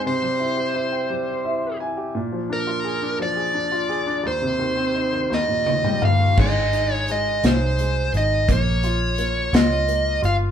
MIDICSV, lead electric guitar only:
0, 0, Header, 1, 2, 480
1, 0, Start_track
1, 0, Key_signature, -4, "major"
1, 0, Tempo, 701754
1, 33, Time_signature, 6, 3, 24, 8
1, 7190, End_track
2, 0, Start_track
2, 0, Title_t, "Lead electric guitar"
2, 0, Program_c, 0, 29
2, 49, Note_on_c, 0, 72, 61
2, 1212, Note_off_c, 0, 72, 0
2, 1728, Note_on_c, 0, 70, 73
2, 2171, Note_off_c, 0, 70, 0
2, 2205, Note_on_c, 0, 74, 69
2, 2921, Note_off_c, 0, 74, 0
2, 2924, Note_on_c, 0, 72, 59
2, 3654, Note_on_c, 0, 75, 66
2, 4100, Note_off_c, 0, 72, 0
2, 4135, Note_off_c, 0, 75, 0
2, 4138, Note_on_c, 0, 77, 73
2, 4379, Note_off_c, 0, 77, 0
2, 4382, Note_on_c, 0, 75, 95
2, 4745, Note_off_c, 0, 75, 0
2, 4745, Note_on_c, 0, 73, 95
2, 4859, Note_off_c, 0, 73, 0
2, 4867, Note_on_c, 0, 75, 101
2, 5105, Note_off_c, 0, 75, 0
2, 5108, Note_on_c, 0, 72, 94
2, 5550, Note_off_c, 0, 72, 0
2, 5589, Note_on_c, 0, 75, 81
2, 5801, Note_off_c, 0, 75, 0
2, 5828, Note_on_c, 0, 73, 86
2, 6534, Note_off_c, 0, 73, 0
2, 6537, Note_on_c, 0, 75, 91
2, 6978, Note_off_c, 0, 75, 0
2, 7013, Note_on_c, 0, 77, 89
2, 7075, Note_off_c, 0, 77, 0
2, 7190, End_track
0, 0, End_of_file